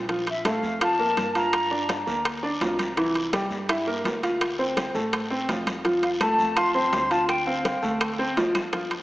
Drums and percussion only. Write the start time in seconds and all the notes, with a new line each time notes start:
0.09 high bongo, high conga, high timbale, long guiro
0.27 high bongo, high conga, high timbale
0.45 high bongo, high conga, high timbale, short guiro
0.64 short guiro
0.81 high bongo, high conga, high timbale, long guiro
0.99 high bongo, high conga
1.17 high bongo, low bongo, high conga, high timbale, short guiro
1.35 high bongo, high conga, high timbale, short guiro
1.53 high bongo, high conga, high timbale, long guiro
1.71 high bongo, high conga
1.89 high bongo, high conga, high timbale, short guiro
2.08 high conga, short guiro
2.25 high bongo, high conga, high timbale, long guiro
2.43 high bongo, high conga
2.61 high bongo, low bongo, high conga, high timbale, low timbale, short guiro
2.79 high bongo, high conga, high timbale, short guiro
2.97 high bongo, high conga, high timbale, long guiro
3.15 high bongo, high conga, high timbale
3.33 high bongo, high conga, high timbale, short guiro
3.51 short guiro
3.69 high bongo, high conga, high timbale, long guiro
3.87 high bongo, high conga
4.05 high bongo, low bongo, high conga, high timbale, low timbale, short guiro
4.23 high bongo, high conga, high timbale, short guiro
4.41 high bongo, high conga, high timbale, long guiro
4.59 high bongo, high conga
4.77 high bongo, high conga, high timbale, short guiro
4.95 high conga, short guiro
5.13 high bongo, high conga, high timbale, long guiro
5.31 high bongo, high conga
5.49 high bongo, low bongo, high conga, high timbale, low timbale, short guiro
5.67 high bongo, high conga, high timbale, short guiro
5.85 high bongo, high conga, high timbale, long guiro
6.03 high bongo, high conga, high timbale
6.21 high bongo, high conga, high timbale, short guiro, claves
6.39 short guiro
6.57 high bongo, high conga, high timbale, long guiro, claves
6.75 high bongo, high conga
6.93 high bongo, low bongo, high conga, high timbale, low timbale, short guiro
7.11 high bongo, high conga, high timbale, short guiro
7.29 high bongo, high conga, high timbale, long guiro, claves
7.47 high bongo, high conga
7.65 high bongo, high conga, high timbale, short guiro
7.83 high conga, short guiro
8.01 high bongo, high conga, high timbale, long guiro, claves
8.19 high bongo, high conga
8.37 high bongo, low bongo, high conga, high timbale, low timbale, short guiro
8.55 high bongo, high conga, high timbale, short guiro, claves
8.73 high bongo, high conga, high timbale, long guiro
8.91 high bongo, high conga, high timbale